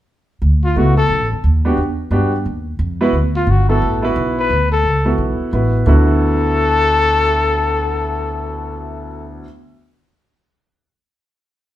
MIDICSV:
0, 0, Header, 1, 5, 480
1, 0, Start_track
1, 0, Key_signature, 2, "major"
1, 0, Tempo, 341880
1, 592, Time_signature, 4, 2, 24, 8
1, 16508, End_track
2, 0, Start_track
2, 0, Title_t, "Trumpet"
2, 0, Program_c, 0, 56
2, 902, Note_on_c, 0, 65, 70
2, 1089, Note_on_c, 0, 66, 68
2, 1110, Note_off_c, 0, 65, 0
2, 1357, Note_off_c, 0, 66, 0
2, 1365, Note_on_c, 0, 69, 84
2, 1812, Note_off_c, 0, 69, 0
2, 4720, Note_on_c, 0, 65, 75
2, 4918, Note_on_c, 0, 66, 66
2, 4939, Note_off_c, 0, 65, 0
2, 5176, Note_off_c, 0, 66, 0
2, 5185, Note_on_c, 0, 69, 70
2, 5633, Note_off_c, 0, 69, 0
2, 6165, Note_on_c, 0, 71, 79
2, 6603, Note_off_c, 0, 71, 0
2, 6626, Note_on_c, 0, 69, 80
2, 7240, Note_off_c, 0, 69, 0
2, 8251, Note_on_c, 0, 69, 96
2, 13168, Note_off_c, 0, 69, 0
2, 16508, End_track
3, 0, Start_track
3, 0, Title_t, "Grand piano"
3, 0, Program_c, 1, 0
3, 1071, Note_on_c, 1, 57, 53
3, 1071, Note_on_c, 1, 59, 49
3, 1089, Note_on_c, 1, 64, 48
3, 1093, Note_on_c, 1, 66, 58
3, 1340, Note_off_c, 1, 57, 0
3, 1340, Note_off_c, 1, 59, 0
3, 1349, Note_off_c, 1, 64, 0
3, 1351, Note_off_c, 1, 66, 0
3, 2315, Note_on_c, 1, 59, 69
3, 2323, Note_on_c, 1, 62, 61
3, 2331, Note_on_c, 1, 66, 60
3, 2345, Note_on_c, 1, 67, 68
3, 2482, Note_off_c, 1, 59, 0
3, 2486, Note_off_c, 1, 62, 0
3, 2490, Note_off_c, 1, 66, 0
3, 2497, Note_off_c, 1, 67, 0
3, 2966, Note_on_c, 1, 59, 60
3, 2974, Note_on_c, 1, 62, 58
3, 2986, Note_on_c, 1, 66, 49
3, 2995, Note_on_c, 1, 67, 67
3, 3243, Note_off_c, 1, 59, 0
3, 3247, Note_off_c, 1, 62, 0
3, 3253, Note_off_c, 1, 66, 0
3, 3258, Note_off_c, 1, 67, 0
3, 4222, Note_on_c, 1, 59, 82
3, 4230, Note_on_c, 1, 64, 75
3, 4238, Note_on_c, 1, 66, 70
3, 4249, Note_on_c, 1, 71, 80
3, 4391, Note_off_c, 1, 59, 0
3, 4395, Note_off_c, 1, 64, 0
3, 4398, Note_off_c, 1, 66, 0
3, 4404, Note_off_c, 1, 71, 0
3, 5177, Note_on_c, 1, 59, 56
3, 5187, Note_on_c, 1, 64, 51
3, 5193, Note_on_c, 1, 66, 53
3, 5204, Note_on_c, 1, 69, 62
3, 5629, Note_off_c, 1, 59, 0
3, 5638, Note_off_c, 1, 64, 0
3, 5641, Note_off_c, 1, 66, 0
3, 5647, Note_off_c, 1, 69, 0
3, 5650, Note_on_c, 1, 59, 65
3, 5660, Note_on_c, 1, 64, 64
3, 5675, Note_on_c, 1, 66, 64
3, 5679, Note_on_c, 1, 71, 80
3, 6282, Note_off_c, 1, 59, 0
3, 6287, Note_off_c, 1, 64, 0
3, 6295, Note_off_c, 1, 66, 0
3, 6297, Note_off_c, 1, 71, 0
3, 7092, Note_on_c, 1, 59, 57
3, 7100, Note_on_c, 1, 64, 48
3, 7108, Note_on_c, 1, 66, 53
3, 7122, Note_on_c, 1, 69, 63
3, 7723, Note_off_c, 1, 59, 0
3, 7727, Note_off_c, 1, 64, 0
3, 7731, Note_off_c, 1, 66, 0
3, 7738, Note_off_c, 1, 69, 0
3, 7764, Note_on_c, 1, 59, 52
3, 7771, Note_on_c, 1, 64, 48
3, 7781, Note_on_c, 1, 66, 45
3, 7791, Note_on_c, 1, 71, 54
3, 8232, Note_off_c, 1, 59, 0
3, 8233, Note_on_c, 1, 38, 63
3, 8242, Note_on_c, 1, 50, 56
3, 8243, Note_off_c, 1, 64, 0
3, 8249, Note_off_c, 1, 66, 0
3, 8253, Note_on_c, 1, 59, 52
3, 8259, Note_off_c, 1, 71, 0
3, 8265, Note_on_c, 1, 64, 58
3, 8270, Note_on_c, 1, 66, 69
3, 13235, Note_off_c, 1, 38, 0
3, 13244, Note_off_c, 1, 50, 0
3, 13254, Note_off_c, 1, 59, 0
3, 13266, Note_off_c, 1, 64, 0
3, 13271, Note_off_c, 1, 66, 0
3, 16508, End_track
4, 0, Start_track
4, 0, Title_t, "Upright bass"
4, 0, Program_c, 2, 32
4, 585, Note_on_c, 2, 38, 84
4, 1053, Note_off_c, 2, 38, 0
4, 1068, Note_on_c, 2, 37, 76
4, 1527, Note_off_c, 2, 37, 0
4, 1535, Note_on_c, 2, 35, 77
4, 1702, Note_off_c, 2, 35, 0
4, 1702, Note_on_c, 2, 33, 56
4, 1854, Note_off_c, 2, 33, 0
4, 1863, Note_on_c, 2, 31, 59
4, 2009, Note_off_c, 2, 31, 0
4, 2017, Note_on_c, 2, 39, 81
4, 2480, Note_off_c, 2, 39, 0
4, 2488, Note_on_c, 2, 40, 71
4, 2948, Note_off_c, 2, 40, 0
4, 2957, Note_on_c, 2, 43, 78
4, 3433, Note_off_c, 2, 43, 0
4, 3446, Note_on_c, 2, 39, 77
4, 3907, Note_off_c, 2, 39, 0
4, 3916, Note_on_c, 2, 41, 89
4, 4379, Note_off_c, 2, 41, 0
4, 4387, Note_on_c, 2, 38, 74
4, 4859, Note_off_c, 2, 38, 0
4, 4868, Note_on_c, 2, 31, 87
4, 5344, Note_off_c, 2, 31, 0
4, 5358, Note_on_c, 2, 33, 80
4, 5829, Note_off_c, 2, 33, 0
4, 5837, Note_on_c, 2, 35, 90
4, 6307, Note_off_c, 2, 35, 0
4, 6318, Note_on_c, 2, 38, 82
4, 6783, Note_off_c, 2, 38, 0
4, 6791, Note_on_c, 2, 37, 70
4, 7264, Note_off_c, 2, 37, 0
4, 7271, Note_on_c, 2, 35, 75
4, 7557, Note_off_c, 2, 35, 0
4, 7760, Note_on_c, 2, 33, 86
4, 8218, Note_off_c, 2, 33, 0
4, 8226, Note_on_c, 2, 38, 90
4, 13172, Note_off_c, 2, 38, 0
4, 16508, End_track
5, 0, Start_track
5, 0, Title_t, "Muted upright bass strokes"
5, 7579, Note_on_c, 9, 29, 33
5, 7720, Note_off_c, 9, 29, 0
5, 16508, End_track
0, 0, End_of_file